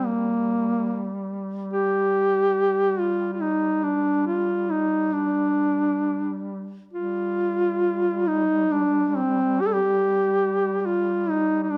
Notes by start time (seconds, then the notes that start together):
Already playing: G3
0.05 A#3
1.73 G4
2.99 F4
3.33 F4
3.40 D#4
3.83 D4
4.27 F4
4.70 D#4
5.13 D4
6.93 G3 F4
8.27 D#4
8.72 D4
9.09 D4
9.17 C4
9.61 G4
9.67 A4
9.73 G4
10.81 G4
10.86 F4
11.29 D#4
11.63 D#4
11.70 D4